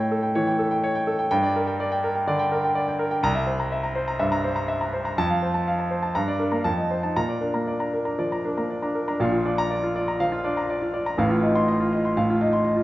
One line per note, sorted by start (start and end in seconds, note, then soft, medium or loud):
0.00 0.33 A2 medium
0.00 0.11 A4 medium
0.00 0.35 C#5 medium
0.00 0.23 G5 loud
0.11 0.31 A4 medium
0.23 0.43 G5 medium
0.35 0.55 E3 medium
0.35 0.55 C#5 medium
0.47 0.67 G5 medium
0.59 0.79 A4 medium
0.71 0.91 G5 medium
0.84 1.03 C#5 medium
0.95 1.15 G5 medium
1.07 1.27 A4 medium
1.19 1.29 G5 medium
1.31 2.25 G2 medium
1.31 1.51 G5 loud
1.43 1.63 D5 medium
1.56 1.75 A#4 medium
1.67 1.87 G5 medium
1.80 1.99 D5 medium
1.92 2.11 G5 medium
2.04 2.23 A#4 medium
2.15 2.35 G5 medium
2.27 2.47 D3 medium
2.27 2.47 D5 medium
2.39 2.59 G5 medium
2.52 2.71 A#4 medium
2.64 2.84 G5 medium
2.75 2.95 D5 medium
2.88 3.08 G5 medium
2.99 3.19 A#4 medium
3.11 3.24 G5 medium
3.23 4.16 C2 medium
3.23 3.43 A#5 loud
3.35 3.55 E5 medium
3.47 3.67 C5 medium
3.60 3.79 A#5 medium
3.72 3.91 E5 medium
3.84 4.03 A#5 medium
3.95 4.15 C5 medium
4.08 4.27 A#5 medium
4.19 4.39 G2 medium
4.19 4.39 E5 medium
4.32 4.51 A#5 medium
4.44 4.64 C5 medium
4.56 4.76 A#5 medium
4.68 4.88 E5 medium
4.81 5.01 A#5 medium
4.93 5.13 C5 medium
5.05 5.18 A#5 medium
5.18 6.13 F2 medium
5.18 5.38 A5 medium
5.30 5.50 F5 medium
5.42 5.62 C5 medium
5.54 5.74 A5 medium
5.67 5.86 F5 medium
5.79 5.98 A5 medium
5.91 6.10 C5 medium
6.03 6.15 A5 medium
6.15 6.64 G2 medium
6.15 6.35 A#5 medium
6.28 6.48 D5 medium
6.39 6.60 D4 medium
6.39 6.60 A#4 medium
6.52 6.65 A#3 medium
6.52 6.65 A#5 medium
6.64 7.14 F2 medium
6.64 6.85 A5 medium
6.78 6.98 D#5 medium
6.91 7.11 C5 medium
7.03 7.16 D#4 medium
7.03 7.16 A5 medium
7.16 8.16 A#2 medium
7.16 7.37 A#5 medium
7.29 7.49 D5 medium
7.41 7.62 D4 medium
7.41 7.62 A#4 medium
7.54 7.75 A#3 medium
7.54 7.75 A#5 medium
7.67 7.88 D5 medium
7.80 8.01 D4 medium
7.80 8.01 A#5 medium
7.93 8.14 A#4 medium
8.05 8.26 D4 soft
8.05 8.26 A#5 medium
8.19 8.39 F3 medium
8.19 8.39 D5 medium
8.32 8.52 A#5 medium
8.44 8.65 D4 medium
8.44 8.65 A#4 soft
8.57 8.78 A#3 medium
8.57 8.78 A#5 medium
8.70 8.90 D5 medium
8.82 9.03 D4 medium
8.82 9.03 A#5 medium
8.95 9.15 A#4 medium
9.08 9.20 D4 medium
9.08 9.20 A#5 medium
9.20 10.16 A#1 medium
9.20 10.17 A#2 medium
9.20 9.40 F5 medium
9.32 9.53 F4 medium
9.45 9.65 D4 medium
9.45 9.66 D5 medium
9.58 9.78 A#5 medium
9.70 9.90 D5 medium
9.83 10.03 F4 medium
9.96 10.15 D5 medium
10.08 10.27 A#5 medium
10.20 10.40 F3 medium
10.20 10.40 F5 medium
10.32 10.52 F4 medium
10.44 10.64 D4 medium
10.44 10.64 D5 medium
10.57 10.77 A#5 medium
10.70 10.89 D5 medium
10.82 11.02 F4 medium
10.94 11.14 D5 medium
11.06 11.19 A#5 medium
11.18 12.13 A1 medium
11.18 12.14 A2 medium
11.18 11.38 F5 medium
11.30 11.50 F4 medium
11.43 11.63 D#4 medium
11.43 11.62 D#5 medium
11.55 11.75 C6 medium
11.68 11.88 D#5 medium
11.80 12.00 F4 medium
11.93 12.12 D#5 medium
12.05 12.24 C6 medium
12.17 12.83 A2 medium
12.17 12.36 F5 medium
12.30 12.49 F4 medium
12.41 12.61 D#4 medium
12.41 12.61 D#5 medium
12.53 12.73 C6 medium
12.64 12.83 D#5 medium
12.77 12.83 F4 medium